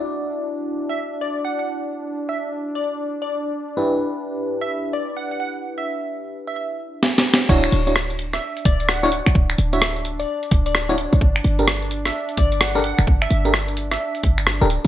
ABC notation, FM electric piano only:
X:1
M:4/4
L:1/16
Q:"Swing 16ths" 1/4=129
K:D
V:1 name="FM electric piano"
[DEFd]16- | [DEFd]12- [DEFd]2 z2 | [DEGB]16- | [DEGB]12 z4 |
[DEFc]3 [DEFc] z8 z [DEFc] z2 | z3 [DEFc] z8 z [DEFc] z2 | z3 [DGA_B] z8 z [DGAB] z2 | z3 [DGA_B] z8 z [DGAB] z2 |]